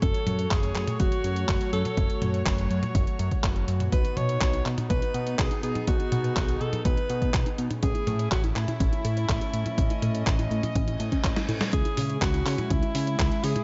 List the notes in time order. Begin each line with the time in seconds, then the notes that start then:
0.02 F#1 F#3 A3 C#4 F#4 A4 C#5, kick, closed hi-hat
0.14 F#4, closed hi-hat
0.27 F#2 A4, closed hi-hat, high tom
0.39 closed hi-hat
0.51 F#1 G#4, kick, clap, closed hi-hat
0.63 F#4, closed hi-hat
0.75 F#2, clap, closed hi-hat
0.88 F#4, closed hi-hat, high tom
1.00 F#1 C#4 F#4, kick, closed hi-hat
1.12 F#4, closed hi-hat
1.24 F#2, closed hi-hat
1.36 C#5, closed hi-hat
1.49 F#1, kick, clap, closed hi-hat
1.61 closed hi-hat
1.73 F#2 A4, closed hi-hat
1.85 F#4, closed hi-hat, high tom
1.97 F#1 C#4, kick, closed hi-hat
2.10 F#4, closed hi-hat
2.22 F#2 A4, closed hi-hat, high tom
2.34 closed hi-hat
2.46 F#1 A4, kick, clap, closed hi-hat
2.58 F#4, closed hi-hat
2.70 F#2 A#5, closed hi-hat
2.83 F#4, closed hi-hat, high tom
2.95 F#1 C#4, kick, closed hi-hat
3.07 F#4, closed hi-hat
3.19 F#2 A4, closed hi-hat
3.31 C#5, kick, closed hi-hat
3.44 F#1 A4, kick, clap, closed hi-hat
3.56 F#4, closed hi-hat
3.68 F#2, closed hi-hat
3.80 F#4, closed hi-hat, high tom
3.92 B1 B3 D#4 B4, kick, closed hi-hat
4.05 D#4, closed hi-hat
4.17 B2 F#4 C#5, closed hi-hat, high tom
4.29 B4, closed hi-hat
4.41 B1 F#4, kick, clap, closed hi-hat
4.53 D#4, closed hi-hat
4.66 B2, clap, closed hi-hat
4.78 D#4, closed hi-hat, high tom
4.90 B1 B3 B4, kick, closed hi-hat
5.02 D#4, closed hi-hat
5.14 B2 F#4, closed hi-hat
5.27 B4, closed hi-hat
5.39 B1 F#4 G#4, kick, clap, closed hi-hat
5.51 D#4, closed hi-hat
5.63 B2 G#4 A#5, closed hi-hat
5.75 D#4, closed hi-hat, high tom
5.87 B1 B3 F#4 G#4, kick, closed hi-hat
6.00 D#4, closed hi-hat
6.12 B2 F#4, closed hi-hat, high tom
6.24 B4, closed hi-hat
6.36 B1 F#4, kick, clap, closed hi-hat
6.48 D#4, closed hi-hat
6.61 B2 A4 A#5, closed hi-hat
6.73 D#4, closed hi-hat, high tom
6.85 B1 B3 B4, kick, closed hi-hat
6.97 D#4, closed hi-hat
7.10 B2 F#4, closed hi-hat
7.22 kick, closed hi-hat
7.34 B1 F#4, kick, clap, closed hi-hat
7.46 D#4, closed hi-hat
7.58 B2 A#5, closed hi-hat
7.70 D#4, closed hi-hat, high tom
7.83 A1 A3 C#4 E4 G#4, kick, closed hi-hat
7.95 E4, closed hi-hat
8.07 A2 A4, closed hi-hat, high tom
8.19 C#5, closed hi-hat
8.31 A1 F#4 A4, kick, clap, closed hi-hat
8.44 E4, closed hi-hat
8.56 A2 E4 A#5, clap, closed hi-hat
8.68 E4, closed hi-hat, high tom
8.80 A1 C#4, kick, closed hi-hat
8.92 E4, closed hi-hat
9.05 A2 A4, closed hi-hat
9.17 C#5, closed hi-hat
9.29 A1 A4, kick, clap, closed hi-hat
9.41 E4, closed hi-hat
9.54 A2 A#5, closed hi-hat
9.66 E4, closed hi-hat, high tom
9.78 A1 C#4 D#5, kick, closed hi-hat
9.90 E4, closed hi-hat
10.02 A2 A4, closed hi-hat, high tom
10.15 C#5, closed hi-hat
10.27 A1 A4, kick, clap, closed hi-hat
10.39 E4, closed hi-hat
10.51 A2 A#5, closed hi-hat
10.63 E4, closed hi-hat, high tom
10.75 A1 C#4, kick, closed hi-hat, reverse cymbal
10.88 E4, closed hi-hat
11.00 A2 A5, closed hi-hat
11.12 C#4, kick, closed hi-hat
11.24 A1 C#5, kick, clap, closed hi-hat
11.36 E4, snare, closed hi-hat
11.49 A2 E4, closed hi-hat, high tom
11.61 A4, snare, closed hi-hat, high tom
11.73 C#2 G#3 C#4 E4 G#4, kick, closed hi-hat
11.85 E4, closed hi-hat
11.97 C#3 G#4, open hi-hat, high tom
12.09 C#5, closed hi-hat
12.22 C#2 F#4 G#4, kick, clap, closed hi-hat
12.34 E4, closed hi-hat
12.46 C#3, clap, open hi-hat
12.58 E4, closed hi-hat, high tom
12.70 C#2 C#4 E4, kick, closed hi-hat
12.83 E4, closed hi-hat
12.95 C#3 G#4, open hi-hat
13.07 C#5, closed hi-hat
13.19 C#2 G#4, kick, clap, closed hi-hat
13.31 E4, closed hi-hat
13.44 C#3 G#4 A#5, open hi-hat
13.56 E4, closed hi-hat, high tom